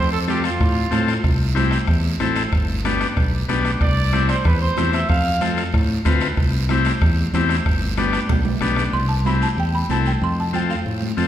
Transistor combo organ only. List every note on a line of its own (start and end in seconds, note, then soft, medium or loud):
0.28 0.50 C4 medium
0.28 0.50 F4 medium
0.28 0.50 A4 medium
0.91 1.14 C4 medium
0.91 1.14 F4 medium
0.91 1.14 A4 medium
1.55 1.78 C4 medium
1.55 1.78 E4 medium
1.55 1.78 G4 medium
2.20 2.43 C4 medium
2.20 2.43 E4 medium
2.20 2.43 A4 medium
2.85 3.07 B3 medium
2.85 3.07 D4 medium
2.85 3.08 G4 medium
3.49 3.71 B3 medium
3.49 3.71 D4 medium
3.49 3.71 G4 medium
4.13 4.35 C4 medium
4.13 4.36 E4 medium
4.13 4.36 G4 medium
4.77 5.00 C4 medium
4.77 5.00 E4 medium
4.77 5.00 G4 medium
5.41 5.64 C4 medium
5.41 5.64 F4 medium
5.41 5.64 A4 medium
6.05 6.28 C4 medium
6.05 6.28 F4 medium
6.05 6.28 B4 medium
6.70 6.92 C4 medium
6.70 6.92 E4 medium
6.70 6.93 G4 medium
7.34 7.56 C4 medium
7.34 7.57 E4 medium
7.34 7.57 G4 medium
7.98 8.20 B3 medium
7.98 8.20 D4 medium
7.98 8.21 G4 medium
8.61 8.84 B3 medium
8.61 8.84 D4 medium
8.61 8.84 G4 medium
9.26 9.48 C4 medium
9.26 9.49 E4 medium
9.26 9.48 G4 medium
9.90 10.12 C4 medium
9.90 10.12 E4 medium
9.90 10.13 A4 medium
10.53 10.76 C4 medium
10.53 10.76 F4 medium
10.53 10.76 A4 medium
11.17 11.28 C4 medium
11.17 11.28 F4 medium
11.17 11.28 A4 medium